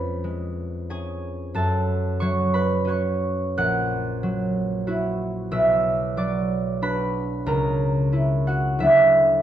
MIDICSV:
0, 0, Header, 1, 2, 480
1, 0, Start_track
1, 0, Key_signature, 3, "minor"
1, 0, Tempo, 663717
1, 1112, Time_signature, 3, 2, 24, 8
1, 2076, Tempo, 703400
1, 2556, Key_signature, 2, "minor"
1, 2556, Tempo, 652884
1, 5916, Tempo, 701754
1, 6790, End_track
2, 0, Start_track
2, 0, Title_t, "Harp"
2, 0, Program_c, 0, 46
2, 0, Note_on_c, 0, 41, 58
2, 0, Note_on_c, 0, 56, 53
2, 0, Note_on_c, 0, 61, 49
2, 0, Note_on_c, 0, 68, 56
2, 0, Note_on_c, 0, 71, 65
2, 0, Note_on_c, 0, 73, 55
2, 0, Note_on_c, 0, 80, 74
2, 0, Note_on_c, 0, 83, 84
2, 0, Note_on_c, 0, 85, 65
2, 165, Note_off_c, 0, 56, 0
2, 174, Note_on_c, 0, 56, 51
2, 642, Note_off_c, 0, 61, 0
2, 642, Note_off_c, 0, 80, 0
2, 648, Note_off_c, 0, 68, 0
2, 649, Note_on_c, 0, 61, 47
2, 652, Note_on_c, 0, 80, 79
2, 657, Note_on_c, 0, 68, 59
2, 1117, Note_on_c, 0, 42, 69
2, 1123, Note_on_c, 0, 81, 87
2, 1130, Note_on_c, 0, 69, 64
2, 1134, Note_off_c, 0, 80, 0
2, 1136, Note_off_c, 0, 41, 0
2, 1136, Note_off_c, 0, 83, 0
2, 1137, Note_off_c, 0, 56, 0
2, 1138, Note_off_c, 0, 68, 0
2, 1140, Note_off_c, 0, 71, 0
2, 1583, Note_off_c, 0, 85, 0
2, 1592, Note_on_c, 0, 85, 103
2, 1599, Note_off_c, 0, 73, 0
2, 1602, Note_on_c, 0, 54, 66
2, 1607, Note_on_c, 0, 73, 68
2, 1835, Note_on_c, 0, 83, 97
2, 1843, Note_on_c, 0, 71, 73
2, 2056, Note_off_c, 0, 61, 0
2, 2059, Note_on_c, 0, 61, 58
2, 2066, Note_off_c, 0, 85, 0
2, 2076, Note_off_c, 0, 73, 0
2, 2076, Note_on_c, 0, 66, 55
2, 2084, Note_on_c, 0, 73, 60
2, 2092, Note_on_c, 0, 85, 73
2, 2241, Note_off_c, 0, 83, 0
2, 2556, Note_on_c, 0, 34, 73
2, 2558, Note_on_c, 0, 90, 105
2, 2563, Note_on_c, 0, 78, 80
2, 2580, Note_off_c, 0, 42, 0
2, 2580, Note_off_c, 0, 71, 0
2, 2581, Note_off_c, 0, 81, 0
2, 2585, Note_off_c, 0, 69, 0
2, 3030, Note_off_c, 0, 54, 0
2, 3038, Note_on_c, 0, 54, 65
2, 3500, Note_off_c, 0, 66, 0
2, 3509, Note_on_c, 0, 66, 58
2, 3512, Note_on_c, 0, 64, 59
2, 3982, Note_on_c, 0, 35, 73
2, 3985, Note_on_c, 0, 88, 96
2, 3995, Note_on_c, 0, 76, 73
2, 4010, Note_off_c, 0, 64, 0
2, 4010, Note_off_c, 0, 85, 0
2, 4011, Note_off_c, 0, 34, 0
2, 4011, Note_off_c, 0, 61, 0
2, 4015, Note_off_c, 0, 73, 0
2, 4458, Note_off_c, 0, 54, 0
2, 4465, Note_on_c, 0, 54, 62
2, 4467, Note_on_c, 0, 86, 87
2, 4472, Note_on_c, 0, 74, 66
2, 4808, Note_off_c, 0, 88, 0
2, 4940, Note_off_c, 0, 66, 0
2, 4942, Note_on_c, 0, 62, 52
2, 4947, Note_on_c, 0, 66, 53
2, 4947, Note_on_c, 0, 83, 84
2, 4950, Note_on_c, 0, 71, 64
2, 5415, Note_on_c, 0, 37, 73
2, 5422, Note_on_c, 0, 82, 93
2, 5425, Note_off_c, 0, 90, 0
2, 5426, Note_on_c, 0, 70, 71
2, 5430, Note_off_c, 0, 78, 0
2, 5439, Note_off_c, 0, 86, 0
2, 5442, Note_off_c, 0, 74, 0
2, 5444, Note_off_c, 0, 35, 0
2, 5444, Note_off_c, 0, 62, 0
2, 5444, Note_off_c, 0, 83, 0
2, 5446, Note_off_c, 0, 71, 0
2, 5900, Note_on_c, 0, 61, 49
2, 5904, Note_on_c, 0, 64, 54
2, 6139, Note_on_c, 0, 78, 81
2, 6140, Note_off_c, 0, 66, 0
2, 6148, Note_on_c, 0, 66, 62
2, 6356, Note_on_c, 0, 38, 61
2, 6357, Note_off_c, 0, 76, 0
2, 6362, Note_off_c, 0, 54, 0
2, 6366, Note_on_c, 0, 54, 41
2, 6366, Note_on_c, 0, 76, 74
2, 6367, Note_off_c, 0, 64, 0
2, 6371, Note_on_c, 0, 59, 43
2, 6373, Note_off_c, 0, 59, 0
2, 6374, Note_on_c, 0, 59, 43
2, 6378, Note_on_c, 0, 62, 47
2, 6378, Note_on_c, 0, 64, 54
2, 6382, Note_off_c, 0, 62, 0
2, 6385, Note_on_c, 0, 62, 40
2, 6391, Note_off_c, 0, 61, 0
2, 6392, Note_off_c, 0, 37, 0
2, 6395, Note_off_c, 0, 59, 0
2, 6395, Note_off_c, 0, 82, 0
2, 6397, Note_off_c, 0, 70, 0
2, 6405, Note_off_c, 0, 62, 0
2, 6790, Note_off_c, 0, 38, 0
2, 6790, Note_off_c, 0, 54, 0
2, 6790, Note_off_c, 0, 64, 0
2, 6790, Note_off_c, 0, 66, 0
2, 6790, Note_off_c, 0, 76, 0
2, 6790, Note_off_c, 0, 78, 0
2, 6790, End_track
0, 0, End_of_file